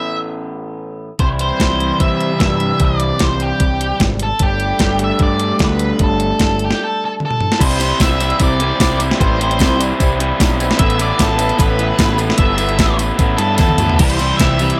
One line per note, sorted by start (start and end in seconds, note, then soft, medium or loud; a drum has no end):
0.00 1.19 A2 medium
0.00 1.20 E3 medium
0.00 1.20 A3 medium
0.00 1.20 B3 medium
0.00 1.22 E4 medium
0.00 0.16 E5 medium
1.19 1.51 C2 medium
1.19 4.40 C3 medium
1.19 4.40 E3 medium
1.19 4.42 G3 medium
1.19 4.41 C4 medium
1.19 4.41 E4 medium
1.19 4.41 G4 medium
1.19 1.25 C5 loud
1.19 kick loud
1.19 closed hi-hat medium
1.39 2.02 C5 medium
1.39 closed hi-hat medium
1.60 1.91 C2 medium
1.60 kick loud
1.60 snare loud
1.60 closed hi-hat medium
1.80 closed hi-hat medium
2.00 2.31 C3 loud
2.00 2.39 E5 medium
2.00 kick loud
2.00 closed hi-hat medium
2.21 closed hi-hat medium
2.40 2.71 G2 medium
2.40 2.81 E5 medium
2.40 kick loud
2.40 snare medium
2.40 closed hi-hat medium
2.60 closed hi-hat medium
2.80 3.11 C2 loud
2.80 kick loud
2.80 closed hi-hat medium
2.85 3.23 D5 loud
3.00 closed hi-hat medium
3.19 3.51 C2 medium
3.19 kick loud
3.19 snare loud
3.19 closed hi-hat medium
3.24 3.42 C5 medium
3.40 3.97 G4 medium
3.40 closed hi-hat medium
3.60 3.91 C2 loud
3.60 kick loud
3.60 closed hi-hat medium
3.81 closed hi-hat medium
4.00 4.31 G#1 medium
4.00 kick loud
4.00 snare loud
4.00 closed hi-hat medium
4.20 4.42 A4 medium
4.20 closed hi-hat medium
4.39 4.71 G1 medium
4.39 7.59 G3 medium
4.39 7.59 A3 medium
4.39 7.60 D4 medium
4.39 4.97 G4 medium
4.39 kick loud
4.39 closed hi-hat medium
4.44 7.60 G4 medium
4.60 closed hi-hat medium
4.79 5.11 G1 medium
4.79 kick loud
4.79 snare loud
4.79 closed hi-hat medium
4.99 closed hi-hat medium
5.04 5.22 E5 medium
5.19 5.51 G2 loud
5.19 5.62 D5 medium
5.19 kick loud
5.19 closed hi-hat medium
5.39 closed hi-hat medium
5.59 5.91 D2 medium
5.59 kick loud
5.59 snare loud
5.59 closed hi-hat medium
5.64 6.00 B4 medium
5.79 closed hi-hat medium
5.99 6.31 G1 loud
5.99 kick loud
5.99 closed hi-hat medium
6.03 6.64 A4 loud
6.20 closed hi-hat medium
6.39 6.72 G1 medium
6.39 kick loud
6.39 snare loud
6.39 closed hi-hat medium
6.59 closed hi-hat medium
6.64 6.81 G4 medium
6.71 snare medium
6.84 7.04 A4 medium
7.05 7.10 A4 medium
7.20 high tom medium
7.25 7.60 A4 medium
7.31 mid tom medium
7.41 mid tom medium
7.52 snare medium
7.59 7.92 C2 loud
7.59 7.78 C3 medium
7.59 7.79 E3 loud
7.59 7.79 G3 loud
7.59 7.79 C4 loud
7.59 7.79 E4 loud
7.59 10.77 C5 medium
7.59 7.98 C5 loud
7.59 10.76 G5 medium
7.59 14.80 E6 loud
7.59 kick loud
7.59 closed hi-hat loud
7.59 crash loud
7.71 closed hi-hat medium
7.78 8.00 C3 medium
7.78 8.01 E3 medium
7.78 8.01 G3 medium
7.78 8.01 C4 medium
7.78 8.01 E4 medium
7.78 closed hi-hat medium
7.78 tambourine medium
8.00 8.32 C2 loud
8.00 8.20 C3 medium
8.00 8.20 E3 medium
8.00 8.20 G3 medium
8.00 8.20 C4 medium
8.00 8.20 E4 loud
8.00 8.42 E5 medium
8.00 kick loud
8.00 snare loud
8.00 closed hi-hat loud
8.00 tambourine medium
8.20 8.38 C3 medium
8.20 8.40 E3 medium
8.20 8.39 G3 medium
8.20 8.39 C4 loud
8.20 8.41 E4 loud
8.20 closed hi-hat medium
8.20 tambourine medium
8.30 closed hi-hat soft
8.40 8.71 C2 medium
8.40 8.58 C3 loud
8.40 8.60 E3 loud
8.40 8.59 G3 medium
8.40 8.60 C4 loud
8.40 8.61 E4 loud
8.40 8.98 D5 loud
8.40 kick loud
8.40 closed hi-hat medium
8.40 tambourine medium
8.59 8.78 C3 medium
8.59 8.80 E3 medium
8.59 8.78 G3 medium
8.59 8.79 C4 medium
8.59 8.81 E4 medium
8.59 closed hi-hat medium
8.79 9.11 C2 medium
8.79 8.98 C3 medium
8.79 9.00 E3 medium
8.79 8.99 G3 medium
8.79 9.00 C4 loud
8.79 9.01 E4 loud
8.79 kick loud
8.79 snare loud
8.79 closed hi-hat medium
8.79 tambourine medium
8.99 9.18 C3 medium
8.99 9.19 E3 medium
8.99 9.19 G3 medium
8.99 9.19 C4 medium
8.99 9.20 E4 medium
8.99 closed hi-hat medium
8.99 tambourine medium
9.11 snare medium
9.19 9.61 A1 loud
9.19 9.38 C3 loud
9.19 9.39 E3 medium
9.19 9.38 G3 loud
9.19 9.39 C4 loud
9.19 9.40 E4 loud
9.19 9.39 C5 loud
9.19 kick loud
9.19 closed hi-hat loud
9.39 9.57 C3 medium
9.39 9.59 E3 medium
9.39 9.59 G3 medium
9.39 9.58 C4 loud
9.39 9.59 E4 loud
9.39 9.79 C5 medium
9.39 closed hi-hat medium
9.51 closed hi-hat soft
9.59 9.91 C2 loud
9.59 9.76 C3 medium
9.59 9.77 E3 medium
9.59 9.77 G3 medium
9.59 9.77 C4 loud
9.59 9.78 E4 medium
9.59 kick loud
9.59 snare loud
9.59 closed hi-hat loud
9.59 tambourine medium
9.77 9.98 C3 medium
9.77 10.00 E3 medium
9.77 9.99 G3 medium
9.77 9.99 C4 medium
9.77 10.00 E4 medium
9.77 closed hi-hat medium
9.77 tambourine medium
9.99 10.31 C2 loud
9.99 10.17 C3 loud
9.99 10.19 E3 loud
9.99 10.18 G3 loud
9.99 10.18 C4 loud
9.99 10.19 E4 loud
9.99 kick loud
9.99 closed hi-hat loud
9.99 tambourine medium
10.19 10.38 C3 medium
10.19 10.40 E3 medium
10.19 10.39 G3 medium
10.19 10.39 C4 medium
10.19 10.40 E4 loud
10.19 closed hi-hat medium
10.39 10.71 B1 loud
10.39 10.58 C3 medium
10.39 10.59 E3 medium
10.39 10.59 G3 loud
10.39 10.60 C4 loud
10.39 10.60 E4 medium
10.39 kick loud
10.39 snare loud
10.39 closed hi-hat loud
10.39 tambourine loud
10.59 10.78 C3 medium
10.59 10.79 E3 medium
10.59 10.79 G3 medium
10.59 10.79 C4 medium
10.59 10.80 E4 loud
10.59 closed hi-hat medium
10.59 tambourine medium
10.71 snare medium
10.78 11.11 A1 loud
10.78 10.98 A2 loud
10.78 10.98 E3 loud
10.78 10.98 A3 loud
10.78 10.99 B3 loud
10.78 10.99 E4 loud
10.78 13.96 B4 medium
10.78 11.00 E5 loud
10.78 13.96 A5 medium
10.78 kick loud
10.78 closed hi-hat loud
10.90 closed hi-hat medium
10.98 11.19 A2 medium
10.98 11.18 E3 medium
10.98 11.19 A3 medium
10.98 11.19 B3 loud
10.98 11.20 E4 loud
10.98 11.21 D5 loud
10.98 closed hi-hat medium
10.98 tambourine medium
11.19 11.51 A1 loud
11.19 11.36 A2 medium
11.19 11.37 E3 medium
11.19 11.37 A3 medium
11.19 11.37 B3 loud
11.19 11.38 E4 loud
11.19 11.58 A4 medium
11.19 kick loud
11.19 snare loud
11.19 closed hi-hat loud
11.19 tambourine loud
11.36 11.56 A2 medium
11.36 11.57 E3 medium
11.36 11.57 A3 medium
11.36 11.57 B3 loud
11.36 11.58 E4 loud
11.36 closed hi-hat medium
11.36 tambourine medium
11.49 closed hi-hat soft
11.57 11.91 A1 loud
11.57 11.76 A2 loud
11.57 11.78 E3 medium
11.57 11.77 A3 loud
11.57 11.77 B3 loud
11.57 11.79 E4 loud
11.57 12.16 B4 medium
11.57 kick loud
11.57 closed hi-hat loud
11.57 tambourine medium
11.77 11.96 A2 medium
11.77 11.97 E3 medium
11.77 11.97 A3 medium
11.77 11.97 B3 medium
11.77 11.98 E4 medium
11.77 closed hi-hat medium
11.97 12.30 A1 medium
11.97 12.16 A2 medium
11.97 12.18 E3 medium
11.97 12.17 A3 medium
11.97 12.18 B3 medium
11.97 12.18 E4 medium
11.97 kick loud
11.97 snare loud
11.97 closed hi-hat medium
11.97 tambourine medium
12.17 12.36 A2 medium
12.17 12.38 E3 medium
12.17 12.38 A3 medium
12.17 12.37 B3 medium
12.17 12.39 E4 loud
12.17 closed hi-hat medium
12.17 tambourine medium
12.30 snare medium
12.37 12.79 G1 loud
12.37 12.55 A2 medium
12.37 12.57 E3 loud
12.37 12.56 A3 loud
12.37 12.56 B3 loud
12.37 12.57 E4 loud
12.37 12.95 E5 loud
12.37 kick loud
12.37 closed hi-hat loud
12.37 tambourine soft
12.56 12.77 A2 medium
12.56 12.78 E3 loud
12.56 12.77 A3 loud
12.56 12.78 B3 medium
12.56 12.78 E4 medium
12.56 closed hi-hat medium
12.56 tambourine medium
12.69 closed hi-hat soft
12.78 13.11 A1 loud
12.78 12.96 A2 medium
12.78 12.98 E3 medium
12.78 12.97 A3 medium
12.78 12.97 B3 medium
12.78 12.98 E4 loud
12.78 kick loud
12.78 snare loud
12.78 closed hi-hat loud
12.78 tambourine medium
12.98 13.16 A2 medium
12.98 13.17 E3 medium
12.98 13.17 A3 medium
12.98 13.17 B3 medium
12.98 13.18 E4 medium
12.98 closed hi-hat medium
12.98 tambourine medium
13.17 13.35 A1 loud
13.17 13.37 A2 medium
13.17 13.38 E3 loud
13.17 13.38 A3 loud
13.17 13.38 B3 loud
13.17 13.39 E4 loud
13.17 kick loud
13.17 closed hi-hat loud
13.17 tambourine medium
13.37 13.58 G2 medium
13.37 13.58 A2 medium
13.37 13.59 E3 medium
13.37 13.59 A3 medium
13.37 13.59 B3 medium
13.37 13.60 E4 loud
13.37 13.55 A4 medium
13.37 closed hi-hat medium
13.37 tambourine soft
13.56 13.77 E2 medium
13.56 13.78 A2 medium
13.56 13.79 E3 medium
13.56 13.79 A3 medium
13.56 13.79 B3 medium
13.56 13.80 E4 medium
13.56 13.96 A4 medium
13.56 kick loud
13.56 snare medium
13.56 closed hi-hat loud
13.56 tambourine medium
13.69 high tom medium
13.77 13.97 D2 medium
13.77 13.98 A2 medium
13.77 13.99 E3 medium
13.77 13.99 A3 medium
13.77 13.99 B3 medium
13.77 13.99 E4 medium
13.77 closed hi-hat medium
13.77 mid tom loud
13.77 tambourine medium
13.89 floor tom medium
13.96 14.31 C2 loud
13.96 14.19 C3 loud
13.96 14.19 E3 loud
13.96 14.20 G3 medium
13.96 14.20 C4 loud
13.96 14.20 E4 loud
13.96 14.35 C5 loud
13.96 kick loud
13.96 closed hi-hat loud
13.96 crash loud
14.00 14.21 G4 loud
14.00 14.80 C5 medium
14.00 14.80 G5 medium
14.10 closed hi-hat medium
14.19 14.39 C3 medium
14.19 14.40 E3 medium
14.19 14.40 G3 medium
14.19 14.40 C4 medium
14.19 14.41 E4 loud
14.19 14.41 G4 loud
14.19 closed hi-hat medium
14.19 tambourine medium
14.37 14.71 C2 medium
14.37 14.59 C3 medium
14.37 14.59 E3 medium
14.37 14.76 E5 loud
14.37 kick loud
14.37 closed hi-hat loud
14.37 tambourine medium
14.41 14.60 G3 medium
14.41 14.60 C4 medium
14.41 14.60 E4 medium
14.41 14.62 G4 medium
14.41 snare loud
14.59 14.79 C3 medium
14.59 14.80 E3 medium
14.59 14.80 G3 medium
14.59 14.80 C4 medium
14.59 14.80 E4 medium
14.59 14.80 G4 loud
14.59 closed hi-hat medium
14.59 tambourine medium
14.70 closed hi-hat soft